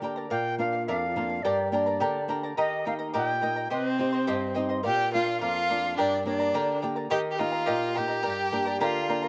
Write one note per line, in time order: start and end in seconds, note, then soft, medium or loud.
0.00 0.29 D3 medium
0.00 0.25 A#3 soft
0.00 0.25 D4 soft
0.00 0.25 G4 soft
0.00 0.16 A#4 medium
0.00 0.16 D5 medium
0.00 0.17 G5 medium
0.04 0.15 A#5 medium
0.16 0.29 A#4 soft
0.16 0.30 D5 soft
0.16 0.31 A#5 soft
0.30 0.86 A#2 medium
0.30 0.58 A#4 medium
0.30 0.58 D5 medium
0.30 0.59 F5 medium
0.30 0.57 G5 medium
0.58 1.04 A#3 soft
0.58 1.05 D4 soft
0.58 1.05 F4 soft
0.58 0.73 A#4 soft
0.58 0.73 D5 medium
0.58 0.85 F5 medium
0.58 0.72 F5 medium
0.73 0.87 D5 soft
0.73 0.87 F5 soft
0.86 1.43 F2 medium
0.86 1.15 A#4 medium
0.86 1.16 D5 medium
0.86 1.44 F5 medium
0.86 1.16 F5 medium
1.16 1.39 A#3 soft
1.16 1.39 D4 soft
1.16 1.39 F4 soft
1.16 1.30 A#4 soft
1.16 1.30 D5 medium
1.16 1.28 F5 medium
1.30 1.44 D5 soft
1.30 1.44 F5 soft
1.42 2.00 G2 medium
1.42 1.73 G4 medium
1.42 1.72 A#4 medium
1.42 1.70 D5 medium
1.42 1.73 D5 medium
1.42 1.72 G5 medium
1.42 1.73 A#5 medium
1.71 2.18 A#3 soft
1.71 2.18 D4 soft
1.71 2.18 G4 medium
1.71 1.86 A#4 medium
1.71 2.24 D5 medium
1.71 1.86 D5 medium
1.71 1.87 G5 medium
1.71 1.85 A#5 medium
1.86 2.00 A#4 soft
1.86 2.00 D5 soft
1.86 2.00 A#5 medium
2.00 2.56 D3 medium
2.00 2.29 G4 medium
2.00 2.28 A#4 medium
2.00 2.29 D5 medium
2.00 2.28 G5 medium
2.00 2.29 A#5 medium
2.28 2.51 A#3 soft
2.28 2.51 D4 soft
2.28 2.52 G4 medium
2.28 2.43 A#4 medium
2.28 2.43 D5 medium
2.28 2.43 G5 medium
2.28 2.42 A#5 medium
2.43 2.56 A#4 soft
2.43 2.58 D5 soft
2.43 2.57 A#5 medium
2.57 3.13 D#3 medium
2.57 2.86 G4 medium
2.57 2.85 A#4 medium
2.57 2.85 D#5 medium
2.57 2.84 G5 medium
2.57 2.86 A#5 medium
2.85 3.32 A#3 soft
2.85 3.32 D#4 soft
2.85 3.32 G4 medium
2.85 2.99 A#4 soft
2.85 2.98 D#5 soft
2.85 2.93 F5 medium
2.85 3.00 G5 soft
2.85 2.97 A#5 medium
2.99 3.13 A#4 soft
2.99 3.13 D#5 medium
2.99 3.13 A#5 medium
3.14 3.70 A#2 medium
3.14 3.42 G4 medium
3.14 3.41 A#4 medium
3.14 3.41 D#5 medium
3.14 3.40 G5 medium
3.14 3.68 G5 loud
3.14 3.42 A#5 medium
3.41 3.65 A#3 soft
3.41 3.66 D#4 soft
3.41 3.66 G4 soft
3.41 3.56 A#4 medium
3.41 3.55 D#5 medium
3.41 3.56 G5 medium
3.41 3.55 A#5 medium
3.56 3.70 A#4 soft
3.56 3.70 D#5 soft
3.56 3.71 A#5 soft
3.70 4.26 C3 medium
3.70 4.53 C4 medium
3.70 3.99 G4 medium
3.70 3.88 B4 medium
3.70 3.97 C5 medium
3.70 3.98 D#5 medium
3.70 3.97 G5 medium
3.70 3.98 C6 medium
3.88 4.53 C5 medium
3.98 4.45 C4 soft
3.98 4.45 D#4 soft
3.98 4.45 G4 soft
3.98 4.13 C5 soft
3.98 4.12 D#5 medium
3.98 4.13 G5 medium
3.98 4.11 C6 medium
4.13 4.27 C5 soft
4.13 4.27 D#5 soft
4.13 4.27 C6 soft
4.27 4.83 G2 medium
4.27 4.56 G4 medium
4.27 4.54 C5 medium
4.27 4.54 D#5 medium
4.27 4.53 G5 medium
4.27 4.55 C6 medium
4.55 4.79 C4 soft
4.55 4.79 D#4 soft
4.55 4.80 G4 soft
4.55 4.69 C5 medium
4.55 4.69 D#5 medium
4.55 4.69 G5 medium
4.55 4.68 C6 medium
4.69 4.83 C5 soft
4.69 4.83 D#5 soft
4.69 4.84 C6 soft
4.83 5.40 A#2 medium
4.83 5.11 G4 medium
4.83 5.10 A#4 medium
4.83 5.11 D5 medium
4.83 5.11 F5 medium
4.83 5.11 G5 loud
5.11 5.59 A#3 soft
5.11 5.59 D4 soft
5.11 5.40 F4 medium
5.11 5.60 F4 soft
5.11 5.26 A#4 soft
5.11 5.26 D5 medium
5.11 5.25 F5 medium
5.11 5.39 F5 medium
5.26 5.40 D5 soft
5.26 5.40 F5 medium
5.41 5.97 F2 medium
5.41 5.94 F4 medium
5.41 5.68 A#4 medium
5.41 5.69 D5 medium
5.41 5.94 F5 loud
5.41 5.70 F5 medium
5.69 5.93 A#3 soft
5.69 5.93 D4 soft
5.69 5.93 F4 soft
5.69 5.84 A#4 medium
5.69 5.83 D5 medium
5.69 5.82 F5 medium
5.83 5.97 D5 soft
5.83 5.98 F5 soft
5.97 6.54 G2 medium
5.97 6.24 D4 medium
5.97 6.26 G4 medium
5.97 6.25 A#4 medium
5.97 6.24 D5 medium
5.97 6.26 D5 medium
5.97 6.24 G5 medium
5.97 6.26 A#5 medium
6.26 6.71 A#3 soft
6.26 6.79 D4 medium
6.26 6.72 D4 soft
6.26 6.72 G4 medium
6.26 6.40 A#4 soft
6.26 6.79 D5 medium
6.26 6.39 D5 medium
6.26 6.40 G5 soft
6.26 6.39 A#5 soft
6.40 6.53 A#4 medium
6.40 6.54 D5 medium
6.40 6.54 A#5 medium
6.54 7.09 D3 medium
6.54 6.83 G4 medium
6.54 6.81 A#4 medium
6.54 6.82 D5 medium
6.54 6.81 G5 medium
6.54 6.82 A#5 medium
6.82 7.06 A#3 soft
6.82 7.06 D4 soft
6.82 7.06 G4 medium
6.82 6.96 A#4 medium
6.82 6.95 D5 medium
6.82 6.97 G5 medium
6.82 6.95 A#5 medium
6.96 7.09 A#4 soft
6.96 7.10 D5 soft
6.96 7.10 A#5 soft
7.10 7.66 D#3 medium
7.10 7.39 G4 medium
7.10 7.20 G4 medium
7.10 7.37 A#4 medium
7.10 7.38 D#5 medium
7.10 7.37 G5 medium
7.10 7.18 G5 loud
7.10 7.38 A#5 medium
7.31 7.40 G4 medium
7.31 7.42 G5 medium
7.38 7.85 A#3 soft
7.38 7.86 D#4 soft
7.38 7.98 F4 medium
7.38 7.85 G4 medium
7.38 7.52 A#4 medium
7.38 7.52 D#5 medium
7.38 7.99 F5 loud
7.38 7.53 G5 soft
7.38 7.51 A#5 medium
7.52 7.66 A#4 soft
7.52 7.65 D#5 medium
7.52 7.66 A#5 medium
7.66 8.23 A#2 medium
7.66 7.95 G4 medium
7.66 7.93 A#4 medium
7.66 7.94 D#5 medium
7.66 7.93 G5 medium
7.66 7.94 A#5 medium
7.94 8.19 A#3 soft
7.94 8.20 D#4 soft
7.94 8.80 G4 medium
7.94 8.08 A#4 medium
7.94 8.08 D#5 medium
7.94 8.10 G5 medium
7.94 8.81 G5 medium
7.94 8.07 A#5 medium
7.99 8.20 G4 soft
8.08 8.22 A#4 soft
8.08 8.23 D#5 soft
8.08 8.22 A#5 soft
8.23 8.80 G2 medium
8.23 8.52 G4 medium
8.23 8.51 A#4 medium
8.23 8.51 D5 medium
8.23 8.50 G5 medium
8.23 8.52 A#5 medium
8.51 8.98 A#3 soft
8.51 8.98 D4 soft
8.51 8.98 G4 soft
8.51 8.66 A#4 soft
8.51 8.65 D5 soft
8.51 8.66 G5 medium
8.51 8.64 A#5 medium
8.66 8.80 A#4 soft
8.66 8.80 D5 medium
8.66 8.80 A#5 medium
8.80 9.28 D3 medium
8.80 9.28 F4 medium
8.80 9.09 G4 medium
8.80 9.07 A#4 medium
8.80 9.08 D5 medium
8.80 9.28 F5 medium
8.80 9.07 G5 medium
8.80 9.08 A#5 medium
9.08 9.28 A#3 soft
9.08 9.28 D4 soft
9.08 9.28 G4 soft
9.08 9.22 A#4 medium
9.08 9.22 D5 medium
9.08 9.23 G5 medium
9.08 9.21 A#5 medium
9.22 9.28 A#4 soft
9.22 9.28 D5 soft
9.22 9.28 A#5 medium